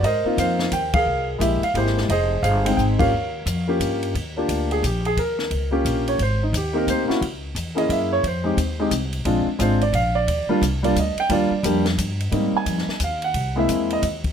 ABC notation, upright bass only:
X:1
M:3/4
L:1/8
Q:"Swing" 1/4=176
K:Ebmix
V:1 name="Upright bass" clef=bass
A,, z F,,2 E,,2 | C,,2 B,,, z A,,,2 | F,,,2 G,,,2 A,,,2 | E,,2 F,,2 G,,2 |
[K:Eb] E,,2 D,,2 B,,,2 | E,,2 _D,,2 B,,,2 | A,,,2 E,,2 D,, z | _D,,2 _F,,2 _G,,2 |
F,,2 E,,2 C,,2 | B,,, z A,,,2 B,,,2 | E,, z C,,2 D,, z | E,, z F,,2 G,,2 |
[K:Ab] A,, z F,, z E,,2 | C,,2 =E,,2 ^D,,2 |]